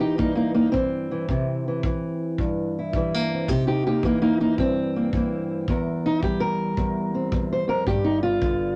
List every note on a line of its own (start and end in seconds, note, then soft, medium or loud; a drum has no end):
0.00 0.73 E3 medium
0.00 0.17 A#3 soft
0.00 0.18 D#4 medium
0.00 0.19 G4 medium
0.18 1.27 G2 medium
0.18 0.34 A#3 medium
0.18 0.36 D#4 medium
0.18 kick medium
0.35 0.53 A#3 medium
0.35 0.54 D#4 medium
0.54 0.71 A#3 medium
0.54 0.74 D#4 medium
0.72 1.11 E3 medium
0.72 2.38 C4 medium
0.72 kick medium
1.11 1.29 E3 soft
1.29 1.84 C3 medium
1.29 1.67 E3 soft
1.29 kick medium
1.68 1.84 E3 soft
1.83 2.95 E3 medium
1.83 kick medium
2.38 3.47 G2 medium
2.38 kick medium
2.79 3.49 E4 soft
2.93 3.51 E3 medium
2.93 3.14 G3 soft
2.93 kick medium
3.14 3.50 A#3 soft
3.34 3.48 C4 soft
3.48 4.04 C3 medium
3.48 3.66 D#4 medium
3.48 3.66 G4 loud
3.48 kick medium
3.67 3.85 D#4 medium
3.67 3.85 G4 medium
3.86 4.05 A#3 soft
3.86 4.04 D#4 medium
3.86 4.04 G4 medium
4.03 5.12 E3 medium
4.03 4.21 A#3 medium
4.03 4.21 D#4 medium
4.03 kick medium
4.22 4.39 A#3 medium
4.22 4.40 D#4 medium
4.40 4.58 A#3 medium
4.40 4.59 D#4 medium
4.57 5.65 G2 medium
4.57 5.69 C4 loud
4.57 kick medium
4.96 5.13 A#3 soft
5.13 5.66 E3 medium
5.13 5.66 A#3 soft
5.13 kick medium
5.68 6.76 E2 medium
5.68 6.39 A#4 medium
5.68 kick medium
6.06 6.23 D#4 loud
6.23 8.26 G3 medium
6.23 6.41 G4 medium
6.23 kick medium
6.40 7.50 A#4 medium
6.77 7.31 E2 medium
6.77 kick medium
7.14 7.85 C4 soft
7.32 7.67 E2 medium
7.32 kick medium
7.53 7.68 C5 medium
7.68 7.86 F2 medium
7.68 7.87 A#4 medium
7.86 8.75 G1 loud
7.86 8.76 G2 medium
7.86 8.05 G4 loud
7.86 kick medium
8.04 8.22 D#4 medium
8.23 8.76 B3 soft
8.23 8.76 F4 loud
8.42 8.76 D3 medium
8.42 kick medium